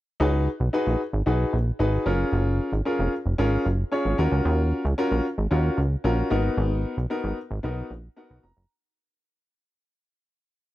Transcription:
0.20 C#2 D#4 F#4 G#4 B4
0.60 B1
0.73 D#4 F#4 G#4 B4
0.87 A#1
1.13 G#1
1.26 B1 D#4 F#4 G#4 B4
1.53 A#1
1.79 G#1 D#4 F#4 G#4 B4
2.06 F#1 C#4 F4 G#4 A#4
2.32 F#1
2.72 G#1
2.85 C#4 F4 G#4 A#4
2.99 F1
3.26 F1
3.38 G#1 C#4 F4 G#4 A#4
3.66 F#1
3.92 C#4 F4 G#4 C#5
4.05 G#1
4.18 D#2 C#4 F4 F#4 A#4
4.32 C#2
4.45 D#2
4.85 C#2
4.98 C#4 F4 F#4 A#4
5.12 A#1
5.38 G#1
5.51 D#2 C#4 F4 F#4 A#4
5.78 C#2
6.04 A#1 C#4 F4 F#4 A#4
6.30 G#1 B3 D#4 F#4 A#4
6.57 G#1
6.97 B1
7.10 B3 D#4 F#4 A#4
7.24 G#1
7.51 G#1
7.63 B1 B3 D#4 F#4 A#4
7.91 A#1
8.16 B3 D#4 F#4 A#4 F#5
8.30 B1
8.43 F1 A#5
8.57 F#1

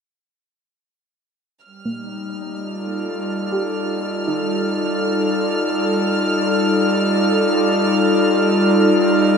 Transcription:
1.65 G3 F6
1.85 A#3 D#4
2.46 D5
2.52 F4 A4
3.52 G4
4.27 D#4

